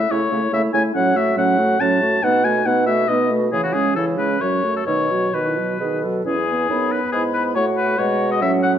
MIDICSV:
0, 0, Header, 1, 6, 480
1, 0, Start_track
1, 0, Key_signature, 4, "major"
1, 0, Tempo, 425834
1, 1064, Time_signature, 3, 2, 24, 8
1, 3965, Tempo, 443131
1, 4925, Tempo, 462606
1, 6845, Tempo, 431034
1, 9663, End_track
2, 0, Start_track
2, 0, Title_t, "Flute"
2, 0, Program_c, 0, 73
2, 6841, Note_on_c, 0, 80, 33
2, 7344, Note_on_c, 0, 83, 33
2, 7361, Note_off_c, 0, 80, 0
2, 7809, Note_off_c, 0, 83, 0
2, 7816, Note_on_c, 0, 83, 34
2, 8290, Note_on_c, 0, 78, 40
2, 8307, Note_off_c, 0, 83, 0
2, 8759, Note_off_c, 0, 78, 0
2, 8766, Note_on_c, 0, 78, 45
2, 9663, Note_off_c, 0, 78, 0
2, 9663, End_track
3, 0, Start_track
3, 0, Title_t, "Oboe"
3, 0, Program_c, 1, 68
3, 0, Note_on_c, 1, 76, 59
3, 123, Note_on_c, 1, 73, 58
3, 140, Note_off_c, 1, 76, 0
3, 593, Note_off_c, 1, 73, 0
3, 600, Note_on_c, 1, 76, 60
3, 704, Note_off_c, 1, 76, 0
3, 830, Note_on_c, 1, 80, 62
3, 936, Note_off_c, 1, 80, 0
3, 1074, Note_on_c, 1, 78, 61
3, 1315, Note_on_c, 1, 76, 69
3, 1331, Note_off_c, 1, 78, 0
3, 1552, Note_off_c, 1, 76, 0
3, 1557, Note_on_c, 1, 78, 66
3, 2032, Note_on_c, 1, 81, 67
3, 2049, Note_off_c, 1, 78, 0
3, 2516, Note_on_c, 1, 78, 72
3, 2533, Note_off_c, 1, 81, 0
3, 2752, Note_on_c, 1, 80, 68
3, 2769, Note_off_c, 1, 78, 0
3, 2995, Note_on_c, 1, 78, 65
3, 3012, Note_off_c, 1, 80, 0
3, 3220, Note_off_c, 1, 78, 0
3, 3226, Note_on_c, 1, 76, 64
3, 3478, Note_on_c, 1, 75, 57
3, 3495, Note_off_c, 1, 76, 0
3, 3722, Note_off_c, 1, 75, 0
3, 3971, Note_on_c, 1, 68, 62
3, 4079, Note_off_c, 1, 68, 0
3, 4089, Note_on_c, 1, 66, 47
3, 4197, Note_on_c, 1, 68, 57
3, 4214, Note_off_c, 1, 66, 0
3, 4434, Note_off_c, 1, 68, 0
3, 4440, Note_on_c, 1, 69, 52
3, 4549, Note_off_c, 1, 69, 0
3, 4682, Note_on_c, 1, 71, 55
3, 4929, Note_on_c, 1, 73, 50
3, 4945, Note_off_c, 1, 71, 0
3, 5287, Note_off_c, 1, 73, 0
3, 5299, Note_on_c, 1, 69, 39
3, 5399, Note_off_c, 1, 69, 0
3, 5405, Note_on_c, 1, 73, 56
3, 5897, Note_on_c, 1, 71, 40
3, 5912, Note_off_c, 1, 73, 0
3, 6615, Note_off_c, 1, 71, 0
3, 6850, Note_on_c, 1, 68, 48
3, 7578, Note_on_c, 1, 71, 48
3, 7595, Note_off_c, 1, 68, 0
3, 7806, Note_off_c, 1, 71, 0
3, 7812, Note_on_c, 1, 68, 46
3, 7921, Note_off_c, 1, 68, 0
3, 8050, Note_on_c, 1, 71, 49
3, 8159, Note_off_c, 1, 71, 0
3, 8293, Note_on_c, 1, 73, 62
3, 8400, Note_off_c, 1, 73, 0
3, 8536, Note_on_c, 1, 71, 59
3, 8771, Note_on_c, 1, 73, 59
3, 8788, Note_off_c, 1, 71, 0
3, 9130, Note_off_c, 1, 73, 0
3, 9139, Note_on_c, 1, 75, 61
3, 9246, Note_off_c, 1, 75, 0
3, 9253, Note_on_c, 1, 76, 64
3, 9360, Note_off_c, 1, 76, 0
3, 9487, Note_on_c, 1, 78, 64
3, 9595, Note_off_c, 1, 78, 0
3, 9663, End_track
4, 0, Start_track
4, 0, Title_t, "Clarinet"
4, 0, Program_c, 2, 71
4, 0, Note_on_c, 2, 64, 40
4, 119, Note_off_c, 2, 64, 0
4, 125, Note_on_c, 2, 64, 42
4, 355, Note_off_c, 2, 64, 0
4, 360, Note_on_c, 2, 64, 39
4, 585, Note_off_c, 2, 64, 0
4, 591, Note_on_c, 2, 64, 39
4, 823, Note_off_c, 2, 64, 0
4, 828, Note_on_c, 2, 64, 42
4, 1056, Note_off_c, 2, 64, 0
4, 1063, Note_on_c, 2, 61, 43
4, 1303, Note_on_c, 2, 66, 43
4, 1320, Note_off_c, 2, 61, 0
4, 1548, Note_on_c, 2, 61, 42
4, 1565, Note_off_c, 2, 66, 0
4, 1790, Note_on_c, 2, 66, 40
4, 1807, Note_off_c, 2, 61, 0
4, 2021, Note_off_c, 2, 66, 0
4, 2028, Note_on_c, 2, 61, 43
4, 2271, Note_on_c, 2, 66, 43
4, 2288, Note_off_c, 2, 61, 0
4, 2505, Note_off_c, 2, 66, 0
4, 2511, Note_on_c, 2, 63, 44
4, 2749, Note_on_c, 2, 66, 40
4, 2766, Note_off_c, 2, 63, 0
4, 2990, Note_on_c, 2, 63, 42
4, 3006, Note_off_c, 2, 66, 0
4, 3235, Note_on_c, 2, 66, 38
4, 3252, Note_off_c, 2, 63, 0
4, 3478, Note_off_c, 2, 66, 0
4, 3484, Note_on_c, 2, 63, 38
4, 3728, Note_on_c, 2, 66, 39
4, 3745, Note_off_c, 2, 63, 0
4, 3961, Note_off_c, 2, 66, 0
4, 3967, Note_on_c, 2, 64, 40
4, 4215, Note_on_c, 2, 61, 36
4, 4231, Note_off_c, 2, 64, 0
4, 4448, Note_on_c, 2, 64, 35
4, 4464, Note_off_c, 2, 61, 0
4, 4687, Note_on_c, 2, 61, 31
4, 4703, Note_off_c, 2, 64, 0
4, 4928, Note_off_c, 2, 61, 0
4, 4935, Note_on_c, 2, 61, 31
4, 5170, Note_on_c, 2, 66, 30
4, 5186, Note_off_c, 2, 61, 0
4, 5410, Note_off_c, 2, 66, 0
4, 5415, Note_on_c, 2, 63, 31
4, 5658, Note_on_c, 2, 66, 29
4, 5673, Note_off_c, 2, 63, 0
4, 5893, Note_off_c, 2, 66, 0
4, 5899, Note_on_c, 2, 66, 38
4, 5952, Note_off_c, 2, 66, 0
4, 6025, Note_on_c, 2, 64, 30
4, 6133, Note_on_c, 2, 66, 34
4, 6149, Note_off_c, 2, 64, 0
4, 6365, Note_off_c, 2, 66, 0
4, 6371, Note_on_c, 2, 68, 39
4, 6603, Note_on_c, 2, 69, 35
4, 6619, Note_off_c, 2, 68, 0
4, 6837, Note_off_c, 2, 69, 0
4, 6844, Note_on_c, 2, 64, 32
4, 7331, Note_on_c, 2, 63, 34
4, 7348, Note_off_c, 2, 64, 0
4, 7674, Note_off_c, 2, 63, 0
4, 7818, Note_on_c, 2, 64, 35
4, 8294, Note_on_c, 2, 66, 37
4, 8311, Note_off_c, 2, 64, 0
4, 8765, Note_off_c, 2, 66, 0
4, 8772, Note_on_c, 2, 66, 46
4, 9249, Note_on_c, 2, 61, 42
4, 9266, Note_off_c, 2, 66, 0
4, 9663, Note_off_c, 2, 61, 0
4, 9663, End_track
5, 0, Start_track
5, 0, Title_t, "French horn"
5, 0, Program_c, 3, 60
5, 0, Note_on_c, 3, 57, 39
5, 118, Note_off_c, 3, 57, 0
5, 128, Note_on_c, 3, 57, 41
5, 351, Note_off_c, 3, 57, 0
5, 357, Note_on_c, 3, 57, 38
5, 585, Note_off_c, 3, 57, 0
5, 592, Note_on_c, 3, 57, 44
5, 823, Note_off_c, 3, 57, 0
5, 830, Note_on_c, 3, 57, 40
5, 1061, Note_off_c, 3, 57, 0
5, 1066, Note_on_c, 3, 54, 43
5, 1308, Note_on_c, 3, 57, 40
5, 1325, Note_off_c, 3, 54, 0
5, 1550, Note_on_c, 3, 54, 42
5, 1567, Note_off_c, 3, 57, 0
5, 1795, Note_on_c, 3, 57, 42
5, 1812, Note_off_c, 3, 54, 0
5, 2036, Note_off_c, 3, 57, 0
5, 2043, Note_on_c, 3, 54, 43
5, 2284, Note_on_c, 3, 57, 39
5, 2301, Note_off_c, 3, 54, 0
5, 2517, Note_off_c, 3, 57, 0
5, 2524, Note_on_c, 3, 59, 41
5, 2763, Note_on_c, 3, 57, 39
5, 2780, Note_off_c, 3, 59, 0
5, 3003, Note_on_c, 3, 59, 41
5, 3020, Note_off_c, 3, 57, 0
5, 3241, Note_on_c, 3, 57, 41
5, 3258, Note_off_c, 3, 59, 0
5, 3480, Note_off_c, 3, 57, 0
5, 3486, Note_on_c, 3, 59, 40
5, 3725, Note_on_c, 3, 57, 36
5, 3742, Note_off_c, 3, 59, 0
5, 3968, Note_off_c, 3, 57, 0
5, 3974, Note_on_c, 3, 52, 40
5, 4213, Note_on_c, 3, 56, 36
5, 4229, Note_off_c, 3, 52, 0
5, 4447, Note_on_c, 3, 52, 35
5, 4463, Note_off_c, 3, 56, 0
5, 4686, Note_on_c, 3, 56, 32
5, 4702, Note_off_c, 3, 52, 0
5, 4921, Note_off_c, 3, 56, 0
5, 4928, Note_on_c, 3, 54, 33
5, 5164, Note_on_c, 3, 57, 30
5, 5180, Note_off_c, 3, 54, 0
5, 5407, Note_off_c, 3, 57, 0
5, 5418, Note_on_c, 3, 51, 32
5, 5659, Note_on_c, 3, 54, 28
5, 5675, Note_off_c, 3, 51, 0
5, 5902, Note_on_c, 3, 51, 30
5, 5917, Note_off_c, 3, 54, 0
5, 6148, Note_on_c, 3, 54, 27
5, 6164, Note_off_c, 3, 51, 0
5, 6381, Note_off_c, 3, 54, 0
5, 6388, Note_on_c, 3, 51, 26
5, 6628, Note_on_c, 3, 54, 27
5, 6644, Note_off_c, 3, 51, 0
5, 6844, Note_off_c, 3, 54, 0
5, 6851, Note_on_c, 3, 61, 31
5, 6960, Note_off_c, 3, 61, 0
5, 7100, Note_on_c, 3, 59, 35
5, 7334, Note_off_c, 3, 59, 0
5, 7341, Note_on_c, 3, 59, 35
5, 8293, Note_on_c, 3, 57, 39
5, 8309, Note_off_c, 3, 59, 0
5, 8764, Note_off_c, 3, 57, 0
5, 8771, Note_on_c, 3, 56, 44
5, 9253, Note_on_c, 3, 54, 47
5, 9269, Note_off_c, 3, 56, 0
5, 9663, Note_off_c, 3, 54, 0
5, 9663, End_track
6, 0, Start_track
6, 0, Title_t, "Bassoon"
6, 0, Program_c, 4, 70
6, 129, Note_on_c, 4, 49, 48
6, 233, Note_off_c, 4, 49, 0
6, 362, Note_on_c, 4, 49, 42
6, 467, Note_off_c, 4, 49, 0
6, 597, Note_on_c, 4, 49, 46
6, 702, Note_off_c, 4, 49, 0
6, 834, Note_on_c, 4, 49, 47
6, 939, Note_off_c, 4, 49, 0
6, 1075, Note_on_c, 4, 45, 53
6, 1494, Note_off_c, 4, 45, 0
6, 1551, Note_on_c, 4, 45, 54
6, 1979, Note_off_c, 4, 45, 0
6, 2035, Note_on_c, 4, 45, 52
6, 2462, Note_off_c, 4, 45, 0
6, 2519, Note_on_c, 4, 47, 54
6, 2941, Note_off_c, 4, 47, 0
6, 3004, Note_on_c, 4, 47, 53
6, 3424, Note_off_c, 4, 47, 0
6, 3486, Note_on_c, 4, 47, 50
6, 3914, Note_off_c, 4, 47, 0
6, 3972, Note_on_c, 4, 49, 46
6, 4387, Note_off_c, 4, 49, 0
6, 4446, Note_on_c, 4, 49, 44
6, 4870, Note_off_c, 4, 49, 0
6, 4928, Note_on_c, 4, 42, 38
6, 5351, Note_off_c, 4, 42, 0
6, 5405, Note_on_c, 4, 47, 36
6, 5834, Note_off_c, 4, 47, 0
6, 5894, Note_on_c, 4, 47, 36
6, 6318, Note_off_c, 4, 47, 0
6, 6373, Note_on_c, 4, 47, 34
6, 6792, Note_off_c, 4, 47, 0
6, 6845, Note_on_c, 4, 40, 35
6, 7300, Note_off_c, 4, 40, 0
6, 7336, Note_on_c, 4, 42, 37
6, 7679, Note_off_c, 4, 42, 0
6, 7821, Note_on_c, 4, 44, 38
6, 8288, Note_off_c, 4, 44, 0
6, 8300, Note_on_c, 4, 45, 44
6, 8764, Note_off_c, 4, 45, 0
6, 8777, Note_on_c, 4, 47, 47
6, 9243, Note_off_c, 4, 47, 0
6, 9253, Note_on_c, 4, 45, 51
6, 9663, Note_off_c, 4, 45, 0
6, 9663, End_track
0, 0, End_of_file